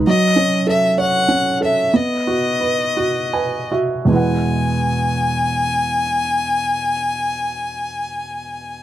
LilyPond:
<<
  \new Staff \with { instrumentName = "Violin" } { \time 6/8 \key e \major \tempo 4. = 50 dis''4 e''8 fis''4 e''8 | dis''2~ dis''8 r8 | gis''2.~ | gis''2. | }
  \new Staff \with { instrumentName = "Felt piano" } { \time 6/8 \key e \major fis8 cis'8 a'8 cis''8 cis'8 a'8 | b8 fis'8 b'8 fis'8 <b' gis''>8 <fis' e''>8 | <e, b, gis e' b' fis''>2.~ | <e, b, gis e' b' fis''>2. | }
>>